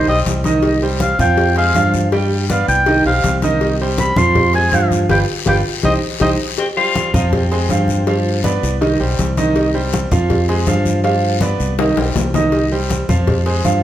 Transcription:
0.07 fingered electric bass B1, grand piano G3 G4 C5, oboe D#5, high conga
0.26 fingered electric bass C2, cowbell, high conga, short guiro
0.44 grand piano D#3 D#4 D#5, cowbell, high conga, short guiro
0.63 cowbell, high conga, long guiro
0.82 grand piano G3 G4 C5, high conga
1.00 oboe F5, cowbell, high conga, short guiro
1.19 fingered electric bass F2, grand piano F3 F4 F5, oboe G5, high conga, low conga, short guiro
1.37 cowbell, high conga, long guiro
1.56 grand piano G#3 G#4 C5, oboe F5, cowbell, high conga
1.75 fingered electric bass G2, grand piano F3 F4 F5, cowbell, high conga, short guiro
1.94 high conga, short guiro
2.12 grand piano G3 G4 G5, cowbell, high conga, long guiro
2.31 high conga
2.49 grand piano B3 B4 D5, oboe F5, cowbell, high conga, short guiro
2.68 fingered electric bass C2, oboe G5, high conga, short guiro
2.86 grand piano D#3 D#4 D#5, cowbell, high conga, long guiro
3.05 fingered electric bass B1, grand piano G3 G4 C5, oboe F5, high conga
3.24 fingered electric bass C2, cowbell, high conga, short guiro
3.42 grand piano D#3 D#4 D#5, cowbell, high conga, short guiro
3.61 cowbell, high conga, long guiro
3.80 grand piano G3 G4 C5, high conga
3.98 oboe B5, cowbell, high conga, short guiro
4.16 fingered electric bass F2, grand piano F3 F4 F5, oboe C6, high conga, low conga, short guiro
4.35 cowbell, high conga, low conga, long guiro
4.54 grand piano G#3 G#4 C5, oboe G#5, cowbell, high conga
4.72 fingered electric bass G2, grand piano F3 F4 F5, cowbell, high conga, short guiro
4.91 high conga, short guiro
5.09 fingered electric bass G1, grand piano F4 G4 B4, oboe G5, cowbell, high conga, long guiro
5.46 fingered electric bass G1, grand piano F4 G4 B4, oboe G5, cowbell, high conga, long guiro
5.83 fingered electric bass C2, grand piano D#4 G4 C5, oboe D#5, cowbell, high conga, long guiro
6.20 fingered electric bass C2, grand piano D#4 G4 C5, oboe D#5, cowbell, high conga, long guiro
6.58 baritone saxophone C4, cowbell, high conga, long guiro
6.77 grand piano G3 G4 C5, baritone saxophone F4, high conga
6.96 cowbell, high conga, short guiro
7.14 fingered electric bass F2, grand piano F3 F4 F5, baritone saxophone D#4, high conga, low conga, short guiro
7.27 baritone saxophone D4
7.33 baritone saxophone C4, cowbell, high conga, low conga, long guiro
7.51 grand piano G#3 G#4 C5, cowbell, high conga
7.69 fingered electric bass G2, grand piano F3 F4 F5, cowbell, high conga, short guiro
7.88 high conga, short guiro
8.07 grand piano F3 F4 F5, cowbell, high conga, long guiro
8.26 high conga
8.44 grand piano B3 B4 D5, cowbell, high conga, short guiro
8.63 fingered electric bass C2, high conga, short guiro
8.81 grand piano D#3 D#4 D#5, cowbell, high conga, long guiro
9.00 fingered electric bass B1, grand piano G3 G4 C5, high conga
9.19 fingered electric bass C2, cowbell, high conga, short guiro
9.37 grand piano D#3 D#4 D#5, cowbell, high conga, short guiro
9.55 cowbell, long guiro
9.74 grand piano G3 G4 C5, high conga
9.93 cowbell, high conga, short guiro
10.11 fingered electric bass F2, grand piano F3 F4 F5, high conga, low conga, short guiro
10.30 cowbell, high conga, low conga, long guiro
10.48 grand piano G#3 G#4 C5, cowbell, high conga
10.67 fingered electric bass G2, grand piano F3 F4 F5, cowbell, high conga, short guiro
10.85 high conga, short guiro
11.04 grand piano F3 F4 F5, cowbell, high conga, long guiro
11.22 high conga
11.41 grand piano B3 B4 D5, cowbell, high conga, short guiro
11.59 fingered electric bass C2, high conga, short guiro
11.78 grand piano D#3 D#4 D#5, cowbell, high bongo, high conga, long guiro
11.97 fingered electric bass B1, grand piano G3 G4 C5, high bongo, high conga
12.15 fingered electric bass C2, cowbell, low bongo, high conga, short guiro
12.34 grand piano D#3 D#4 D#5, cowbell, low bongo, high conga, short guiro
12.52 cowbell, high conga, long guiro
12.72 grand piano G3 G4 C5, high conga
12.90 cowbell, high conga, short guiro
13.09 fingered electric bass F2, grand piano F3 F4 F5, high conga, low conga, short guiro
13.27 cowbell, high conga, low conga, long guiro
13.46 grand piano G#3 G#4 C5, cowbell, high conga
13.65 fingered electric bass G2, grand piano F3 F4 F5, cowbell, high conga, short guiro

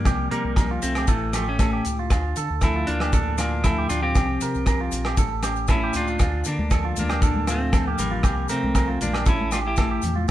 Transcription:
Already playing: clean electric guitar F3 G3 A#3
0.05 sub bass C2, clean electric guitar C3 G4, kick, cross-stick, low agogo, maracas
0.31 sub bass C3, clean electric guitar G3 A#3 G4 A#4, closed hi-hat
0.45 sub bass C2
0.56 clean electric guitar F3 A#4, kick, cross-stick, low agogo, maracas
0.71 clean electric guitar F4
0.82 sub bass C2, clean electric guitar A3 C4 F4, closed hi-hat, maracas
0.95 clean electric guitar G4, cross-stick, low agogo, maracas
1.07 sub bass A1, clean electric guitar A2 E3 A3 A4, kick, maracas
1.33 clean electric guitar F3 A3 G4, cross-stick, closed hi-hat, low agogo, maracas
1.48 clean electric guitar A3 C#4
1.59 clean electric guitar A3 A4, kick, cross-stick, low agogo, maracas
1.73 clean electric guitar G4
1.85 sub bass C#2, clean electric guitar E4, closed hi-hat, maracas
1.99 clean electric guitar F4
2.10 sub bass D2, clean electric guitar D3 F4, kick, cross-stick, low agogo, maracas
2.36 sub bass D3, clean electric guitar A4, closed hi-hat, maracas
2.50 sub bass D2
2.61 clean electric guitar F3 A3 E4 A4, kick, cross-stick, low agogo, maracas
2.76 clean electric guitar F4
2.87 sub bass D2, clean electric guitar A#3 D4 E4, closed hi-hat
3.00 clean electric guitar G4, cross-stick, low agogo, maracas
3.13 clean electric guitar A2 D4 A4, kick, maracas
3.38 clean electric guitar A#3 D4 E4 F4, cross-stick, closed hi-hat, low agogo, maracas
3.64 clean electric guitar F3 A3 E4 A4, kick, cross-stick, low agogo, maracas
3.78 clean electric guitar G4
3.89 sub bass D2, clean electric guitar D4 F4, closed hi-hat, maracas
4.03 clean electric guitar C4 F4 G4
4.15 sub bass C2, clean electric guitar C3 G4, kick, cross-stick, low agogo, maracas
4.41 sub bass C3, clean electric guitar F4 A#4, closed hi-hat, maracas
4.55 sub bass C2, maracas
4.66 clean electric guitar F3 A#4, kick, cross-stick, low agogo, maracas
4.81 clean electric guitar F4
4.92 sub bass A#1, clean electric guitar F4, closed hi-hat, maracas
5.05 clean electric guitar G4, cross-stick, low agogo
5.17 sub bass A1, clean electric guitar A2 A4, kick, maracas
5.43 clean electric guitar C#4 G4, cross-stick, closed hi-hat, low agogo, maracas
5.56 maracas
5.68 clean electric guitar A3 C#4 E4 A4, kick, cross-stick, low agogo, maracas
5.84 clean electric guitar G4
5.93 sub bass C#2, clean electric guitar C#4 D4 F4, closed hi-hat, maracas
6.07 clean electric guitar F4, maracas
6.19 sub bass D2, clean electric guitar D3 F4, kick, cross-stick, low agogo, maracas
6.44 sub bass D3, clean electric guitar A#3 D4 A4, muted clean electric guitar stroke, closed hi-hat, maracas
6.59 sub bass D2, high conga
6.70 clean electric guitar F3 A4, kick, cross-stick, low agogo, maracas
6.85 clean electric guitar F4
6.96 sub bass D2, clean electric guitar A#3 D4 F4, closed hi-hat, high conga, low conga, maracas
7.09 clean electric guitar G4, cross-stick, low agogo, maracas
7.21 clean electric guitar A2 D4 A4, kick, maracas
7.36 high conga
7.47 clean electric guitar A3 C4 F4, cross-stick, closed hi-hat, low agogo, maracas
7.73 clean electric guitar F3 A4, kick, cross-stick, low agogo, maracas
7.88 clean electric guitar G4
7.98 sub bass A1, clean electric guitar G3 A#3, closed hi-hat, low conga, maracas
8.11 clean electric guitar F4
8.23 sub bass C2, clean electric guitar C3 F3 F4 G4, kick, cross-stick, low agogo, maracas
8.49 sub bass C3, clean electric guitar A3 C4 A#4, closed hi-hat, maracas
8.64 sub bass C2, high conga
8.75 clean electric guitar F3 A#4, kick, cross-stick, low agogo, maracas
8.88 clean electric guitar F4
9.01 sub bass A#1, clean electric guitar A#3 D4 F4, closed hi-hat, high conga, low conga, maracas
9.13 clean electric guitar G4, cross-stick, low agogo, maracas
9.26 sub bass A1, clean electric guitar A2 C#4 E4 A4, kick, maracas
9.41 high conga
9.51 clean electric guitar D4 F4 G4, cross-stick, closed hi-hat, low agogo, maracas
9.65 clean electric guitar E4 G4
9.76 clean electric guitar A3 A4, kick, cross-stick, low agogo, maracas
9.91 clean electric guitar G4
10.02 sub bass E2, clean electric guitar E4, closed hi-hat, low conga, maracas
10.15 clean electric guitar F4, high conga

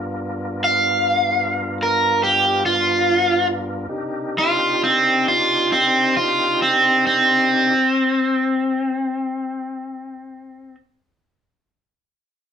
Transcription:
Already playing: tonewheel organ G2 B3 D4 F4 A#4
0.64 overdriven electric guitar F5
1.83 overdriven electric guitar A#4
2.23 overdriven electric guitar G4
2.66 overdriven electric guitar F4
3.89 tonewheel organ C3 D4 D#4 G4 A#4
4.38 overdriven electric guitar F4
4.84 overdriven electric guitar C4
5.28 overdriven electric guitar F4
5.72 overdriven electric guitar C4
6.17 overdriven electric guitar F4
6.62 overdriven electric guitar C4
7.07 overdriven electric guitar C4

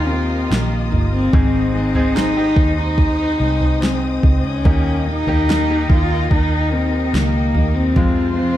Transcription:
Already playing: fingered electric bass D#2, grand piano A#2 A#3 D#4 F4 G4 A#4, steel-string acoustic guitar D#3, cello section F4, string section A#4 D#5 G5 D#6
0.04 cello C#4, steel-string acoustic guitar G4
0.09 steel-string acoustic guitar A#3 D#4, cello C4
0.49 fingered electric bass A#1, steel-string acoustic guitar D#3 A#3 D#4 G4, cello A#3, snare
0.91 fingered electric bass G1, steel-string acoustic guitar A#3 D#4 G4, floor tom
1.11 cello C4
1.33 fingered electric bass G#1, steel-string acoustic guitar G#2 D#3 G#3 C4 D#4 G#4, grand piano G#2 D#3 C4 D#4 G#4, cello section D#4, string section C5, kick, floor tom
1.74 steel-string acoustic guitar G#3 C4 D#4 G#4, cello C4
1.95 grand piano C4 D#4 G#4, floor tom
2.14 steel-string acoustic guitar G#3 C4 D#4 G#4, cello D#4, snare
2.36 grand piano C4 D#4 G4
2.56 fingered electric bass D#2, kick, floor tom
2.76 cello D#4
2.98 kick, floor tom
3.38 fingered electric bass C2, steel-string acoustic guitar G#3 C4 D#4 G#4
3.60 floor tom
3.80 steel-string acoustic guitar G#3 C4 D#4 G#4, cello C4, snare
4.22 fingered electric bass C#2, steel-string acoustic guitar G#3 C4 D#4 G#4, kick, floor tom
4.43 cello C#4, floor tom
4.63 fingered electric bass D#2, grand piano A#2 A#3 D#4 G4, steel-string acoustic guitar D#3 A#3 D#4 G4, cello section D#4, string section A#4 G5, kick, floor tom
5.06 steel-string acoustic guitar A#3 D#4 G4, cello D#4
5.27 fingered electric bass D#2, grand piano A#3 D#4 G4, floor tom
5.47 steel-string acoustic guitar D#3 A#3 D#4 G4, snare
5.70 grand piano A#3 D#4 G4
5.89 fingered electric bass D#2, cello F4, kick, floor tom
6.31 fingered electric bass D#2, cello D#4, kick, floor tom
6.71 steel-string acoustic guitar A#3 D#4 G4, cello C4
7.13 fingered electric bass C#2, steel-string acoustic guitar D#3 A#3 D#4 G4, cello A#3, snare
7.55 fingered electric bass D#2, steel-string acoustic guitar A#3 D#4 G4, floor tom
7.74 cello C4
7.96 steel-string acoustic guitar F2 C3 F3 G#3 C4 F4, fingered electric bass F2, grand piano C3 G#3 C4 F4, string section G#3 C5 F5 C6, cello section F4, kick, floor tom
8.34 cello C4, steel-string acoustic guitar F4
8.38 steel-string acoustic guitar F3 G#3 C4

